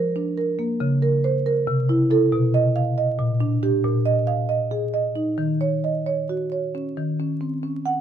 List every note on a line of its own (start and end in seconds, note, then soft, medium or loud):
0.00 0.77 F3 medium
0.00 0.29 A#4 medium
0.16 0.50 D4 medium
0.37 0.72 A#4 medium
0.59 0.81 A#3 medium
0.80 1.64 C#3 loud
1.02 1.37 A#4 medium
1.24 1.46 C5 medium
1.46 1.68 A#4 medium
1.67 2.30 C3 loud
1.89 2.09 E4 medium
2.10 2.30 E4 medium
2.10 2.30 A4 loud
2.32 3.16 B2 loud
2.54 2.89 D#5 medium
2.76 2.97 F5 medium
2.98 3.19 D#5 medium
3.19 3.82 A#2 loud
3.40 3.62 D4 medium
3.63 3.82 D4 medium
3.63 3.82 G4 loud
3.84 5.34 A#2 loud
4.05 4.40 D#5 medium
4.27 4.49 F5 medium
4.49 4.84 D#5 medium
4.71 5.07 G#4 medium
4.94 5.29 D#5 medium
5.16 5.38 D#4 medium
5.38 6.93 D#3 medium
5.61 5.98 C#5 medium
5.84 6.07 D#5 medium
6.06 6.43 C#5 medium
6.29 6.66 F#4 medium
6.52 6.88 C#5 medium
6.75 6.97 C#4 medium
6.97 8.01 D#3 medium
7.20 7.54 C#4 medium
7.41 7.63 C4 medium
7.63 7.98 C#4 medium
7.85 8.01 F#5 medium